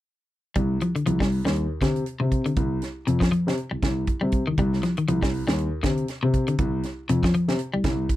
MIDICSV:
0, 0, Header, 1, 5, 480
1, 0, Start_track
1, 0, Key_signature, -3, "minor"
1, 0, Tempo, 501672
1, 545, Time_signature, 4, 2, 24, 8
1, 7811, End_track
2, 0, Start_track
2, 0, Title_t, "Clean electric guitar"
2, 0, Program_c, 0, 27
2, 534, Note_on_c, 0, 55, 76
2, 731, Note_off_c, 0, 55, 0
2, 783, Note_on_c, 0, 53, 62
2, 892, Note_off_c, 0, 53, 0
2, 914, Note_on_c, 0, 50, 59
2, 1001, Note_off_c, 0, 50, 0
2, 1017, Note_on_c, 0, 53, 65
2, 1128, Note_off_c, 0, 53, 0
2, 1151, Note_on_c, 0, 55, 61
2, 1347, Note_off_c, 0, 55, 0
2, 1390, Note_on_c, 0, 55, 57
2, 1586, Note_off_c, 0, 55, 0
2, 1742, Note_on_c, 0, 50, 64
2, 1936, Note_off_c, 0, 50, 0
2, 2103, Note_on_c, 0, 48, 61
2, 2303, Note_off_c, 0, 48, 0
2, 2351, Note_on_c, 0, 50, 59
2, 2547, Note_off_c, 0, 50, 0
2, 2938, Note_on_c, 0, 48, 65
2, 3048, Note_off_c, 0, 48, 0
2, 3065, Note_on_c, 0, 53, 65
2, 3156, Note_off_c, 0, 53, 0
2, 3174, Note_on_c, 0, 53, 64
2, 3372, Note_off_c, 0, 53, 0
2, 4029, Note_on_c, 0, 55, 60
2, 4227, Note_off_c, 0, 55, 0
2, 4280, Note_on_c, 0, 51, 58
2, 4365, Note_off_c, 0, 51, 0
2, 4392, Note_on_c, 0, 55, 85
2, 4583, Note_off_c, 0, 55, 0
2, 4624, Note_on_c, 0, 53, 68
2, 4733, Note_off_c, 0, 53, 0
2, 4765, Note_on_c, 0, 51, 61
2, 4848, Note_off_c, 0, 51, 0
2, 4865, Note_on_c, 0, 53, 66
2, 4974, Note_off_c, 0, 53, 0
2, 5000, Note_on_c, 0, 55, 66
2, 5194, Note_off_c, 0, 55, 0
2, 5238, Note_on_c, 0, 55, 66
2, 5433, Note_off_c, 0, 55, 0
2, 5579, Note_on_c, 0, 50, 67
2, 5776, Note_off_c, 0, 50, 0
2, 5958, Note_on_c, 0, 48, 72
2, 6153, Note_off_c, 0, 48, 0
2, 6201, Note_on_c, 0, 50, 60
2, 6395, Note_off_c, 0, 50, 0
2, 6788, Note_on_c, 0, 48, 75
2, 6896, Note_off_c, 0, 48, 0
2, 6930, Note_on_c, 0, 53, 69
2, 7012, Note_off_c, 0, 53, 0
2, 7028, Note_on_c, 0, 53, 73
2, 7221, Note_off_c, 0, 53, 0
2, 7401, Note_on_c, 0, 55, 65
2, 7594, Note_off_c, 0, 55, 0
2, 7811, End_track
3, 0, Start_track
3, 0, Title_t, "Grand piano"
3, 0, Program_c, 1, 0
3, 536, Note_on_c, 1, 36, 78
3, 730, Note_off_c, 1, 36, 0
3, 1022, Note_on_c, 1, 36, 76
3, 1321, Note_off_c, 1, 36, 0
3, 1387, Note_on_c, 1, 39, 68
3, 1583, Note_off_c, 1, 39, 0
3, 1738, Note_on_c, 1, 48, 71
3, 1931, Note_off_c, 1, 48, 0
3, 2113, Note_on_c, 1, 48, 68
3, 2391, Note_off_c, 1, 48, 0
3, 2457, Note_on_c, 1, 36, 82
3, 2651, Note_off_c, 1, 36, 0
3, 2944, Note_on_c, 1, 41, 76
3, 3135, Note_off_c, 1, 41, 0
3, 3318, Note_on_c, 1, 48, 72
3, 3403, Note_off_c, 1, 48, 0
3, 3559, Note_on_c, 1, 36, 20
3, 3612, Note_off_c, 1, 36, 0
3, 3661, Note_on_c, 1, 36, 66
3, 3854, Note_off_c, 1, 36, 0
3, 4042, Note_on_c, 1, 48, 70
3, 4232, Note_off_c, 1, 48, 0
3, 4284, Note_on_c, 1, 36, 19
3, 4336, Note_off_c, 1, 36, 0
3, 4385, Note_on_c, 1, 36, 91
3, 4577, Note_off_c, 1, 36, 0
3, 4864, Note_on_c, 1, 36, 85
3, 5163, Note_off_c, 1, 36, 0
3, 5245, Note_on_c, 1, 39, 76
3, 5435, Note_off_c, 1, 39, 0
3, 5585, Note_on_c, 1, 48, 71
3, 5777, Note_off_c, 1, 48, 0
3, 5967, Note_on_c, 1, 48, 79
3, 6241, Note_off_c, 1, 48, 0
3, 6306, Note_on_c, 1, 36, 89
3, 6498, Note_off_c, 1, 36, 0
3, 6786, Note_on_c, 1, 41, 84
3, 6978, Note_off_c, 1, 41, 0
3, 7157, Note_on_c, 1, 48, 79
3, 7244, Note_off_c, 1, 48, 0
3, 7403, Note_on_c, 1, 36, 21
3, 7456, Note_off_c, 1, 36, 0
3, 7504, Note_on_c, 1, 36, 78
3, 7696, Note_off_c, 1, 36, 0
3, 7811, End_track
4, 0, Start_track
4, 0, Title_t, "Muted clean electric guitar strokes"
4, 3552, Note_on_c, 9, 29, 60
4, 3647, Note_off_c, 9, 29, 0
4, 7811, End_track
5, 0, Start_track
5, 0, Title_t, "Drums"
5, 530, Note_on_c, 9, 42, 57
5, 535, Note_on_c, 9, 36, 73
5, 625, Note_off_c, 9, 42, 0
5, 631, Note_off_c, 9, 36, 0
5, 775, Note_on_c, 9, 42, 47
5, 871, Note_off_c, 9, 42, 0
5, 918, Note_on_c, 9, 42, 46
5, 1013, Note_off_c, 9, 42, 0
5, 1019, Note_on_c, 9, 42, 62
5, 1114, Note_off_c, 9, 42, 0
5, 1152, Note_on_c, 9, 36, 55
5, 1165, Note_on_c, 9, 38, 54
5, 1247, Note_off_c, 9, 36, 0
5, 1261, Note_off_c, 9, 38, 0
5, 1262, Note_on_c, 9, 46, 54
5, 1358, Note_off_c, 9, 46, 0
5, 1404, Note_on_c, 9, 38, 61
5, 1493, Note_on_c, 9, 42, 63
5, 1499, Note_off_c, 9, 38, 0
5, 1589, Note_off_c, 9, 42, 0
5, 1736, Note_on_c, 9, 36, 60
5, 1739, Note_on_c, 9, 42, 46
5, 1749, Note_on_c, 9, 38, 56
5, 1832, Note_off_c, 9, 36, 0
5, 1834, Note_off_c, 9, 42, 0
5, 1845, Note_off_c, 9, 38, 0
5, 1873, Note_on_c, 9, 42, 47
5, 1969, Note_off_c, 9, 42, 0
5, 1971, Note_on_c, 9, 42, 60
5, 2067, Note_off_c, 9, 42, 0
5, 2216, Note_on_c, 9, 36, 51
5, 2216, Note_on_c, 9, 42, 47
5, 2312, Note_off_c, 9, 36, 0
5, 2312, Note_off_c, 9, 42, 0
5, 2352, Note_on_c, 9, 42, 47
5, 2448, Note_off_c, 9, 42, 0
5, 2453, Note_on_c, 9, 42, 60
5, 2456, Note_on_c, 9, 36, 76
5, 2548, Note_off_c, 9, 42, 0
5, 2552, Note_off_c, 9, 36, 0
5, 2696, Note_on_c, 9, 42, 49
5, 2706, Note_on_c, 9, 38, 25
5, 2791, Note_off_c, 9, 42, 0
5, 2802, Note_off_c, 9, 38, 0
5, 2941, Note_on_c, 9, 42, 64
5, 3036, Note_off_c, 9, 42, 0
5, 3074, Note_on_c, 9, 36, 59
5, 3084, Note_on_c, 9, 38, 61
5, 3169, Note_off_c, 9, 36, 0
5, 3180, Note_off_c, 9, 38, 0
5, 3185, Note_on_c, 9, 42, 41
5, 3281, Note_off_c, 9, 42, 0
5, 3331, Note_on_c, 9, 38, 60
5, 3421, Note_on_c, 9, 42, 56
5, 3426, Note_off_c, 9, 38, 0
5, 3516, Note_off_c, 9, 42, 0
5, 3660, Note_on_c, 9, 36, 62
5, 3660, Note_on_c, 9, 42, 39
5, 3671, Note_on_c, 9, 38, 56
5, 3756, Note_off_c, 9, 36, 0
5, 3756, Note_off_c, 9, 42, 0
5, 3767, Note_off_c, 9, 38, 0
5, 3895, Note_on_c, 9, 42, 58
5, 3899, Note_on_c, 9, 36, 57
5, 3991, Note_off_c, 9, 42, 0
5, 3995, Note_off_c, 9, 36, 0
5, 4131, Note_on_c, 9, 42, 41
5, 4139, Note_on_c, 9, 36, 58
5, 4227, Note_off_c, 9, 42, 0
5, 4235, Note_off_c, 9, 36, 0
5, 4378, Note_on_c, 9, 42, 59
5, 4381, Note_on_c, 9, 36, 76
5, 4474, Note_off_c, 9, 42, 0
5, 4477, Note_off_c, 9, 36, 0
5, 4527, Note_on_c, 9, 38, 26
5, 4620, Note_on_c, 9, 42, 48
5, 4623, Note_off_c, 9, 38, 0
5, 4631, Note_on_c, 9, 38, 24
5, 4716, Note_off_c, 9, 42, 0
5, 4726, Note_off_c, 9, 38, 0
5, 4754, Note_on_c, 9, 42, 44
5, 4850, Note_off_c, 9, 42, 0
5, 4862, Note_on_c, 9, 42, 67
5, 4957, Note_off_c, 9, 42, 0
5, 4998, Note_on_c, 9, 36, 63
5, 5009, Note_on_c, 9, 38, 58
5, 5094, Note_off_c, 9, 36, 0
5, 5105, Note_off_c, 9, 38, 0
5, 5106, Note_on_c, 9, 46, 56
5, 5202, Note_off_c, 9, 46, 0
5, 5247, Note_on_c, 9, 38, 66
5, 5343, Note_off_c, 9, 38, 0
5, 5343, Note_on_c, 9, 42, 66
5, 5438, Note_off_c, 9, 42, 0
5, 5581, Note_on_c, 9, 42, 48
5, 5585, Note_on_c, 9, 36, 60
5, 5591, Note_on_c, 9, 38, 62
5, 5677, Note_off_c, 9, 42, 0
5, 5681, Note_off_c, 9, 36, 0
5, 5687, Note_off_c, 9, 38, 0
5, 5717, Note_on_c, 9, 42, 51
5, 5812, Note_off_c, 9, 42, 0
5, 5819, Note_on_c, 9, 42, 66
5, 5830, Note_on_c, 9, 38, 26
5, 5915, Note_off_c, 9, 42, 0
5, 5925, Note_off_c, 9, 38, 0
5, 6062, Note_on_c, 9, 42, 46
5, 6064, Note_on_c, 9, 36, 57
5, 6158, Note_off_c, 9, 42, 0
5, 6159, Note_off_c, 9, 36, 0
5, 6195, Note_on_c, 9, 42, 51
5, 6290, Note_off_c, 9, 42, 0
5, 6300, Note_on_c, 9, 42, 68
5, 6304, Note_on_c, 9, 36, 86
5, 6396, Note_off_c, 9, 42, 0
5, 6400, Note_off_c, 9, 36, 0
5, 6538, Note_on_c, 9, 42, 50
5, 6549, Note_on_c, 9, 38, 26
5, 6634, Note_off_c, 9, 42, 0
5, 6645, Note_off_c, 9, 38, 0
5, 6784, Note_on_c, 9, 42, 66
5, 6880, Note_off_c, 9, 42, 0
5, 6919, Note_on_c, 9, 36, 63
5, 6928, Note_on_c, 9, 38, 62
5, 7015, Note_off_c, 9, 36, 0
5, 7024, Note_off_c, 9, 38, 0
5, 7024, Note_on_c, 9, 42, 46
5, 7120, Note_off_c, 9, 42, 0
5, 7163, Note_on_c, 9, 38, 64
5, 7259, Note_off_c, 9, 38, 0
5, 7259, Note_on_c, 9, 42, 67
5, 7355, Note_off_c, 9, 42, 0
5, 7499, Note_on_c, 9, 42, 48
5, 7503, Note_on_c, 9, 36, 65
5, 7510, Note_on_c, 9, 38, 63
5, 7595, Note_off_c, 9, 42, 0
5, 7599, Note_off_c, 9, 36, 0
5, 7605, Note_off_c, 9, 38, 0
5, 7744, Note_on_c, 9, 36, 62
5, 7745, Note_on_c, 9, 42, 66
5, 7811, Note_off_c, 9, 36, 0
5, 7811, Note_off_c, 9, 42, 0
5, 7811, End_track
0, 0, End_of_file